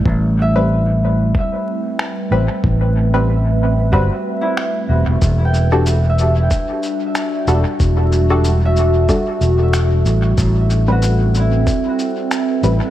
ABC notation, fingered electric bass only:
X:1
M:4/4
L:1/16
Q:"Swing 16ths" 1/4=93
K:Ador
V:1 name="Fingered electric bass" clef=bass
A,,,8 z6 A,,, z | A,,,8 G,,, z4 z E,,, E,,, | E,,,8 z6 E,,, z | E,,,8 z2 E,,,4 A,,,2 |
A,,,8 z6 A,,, z |]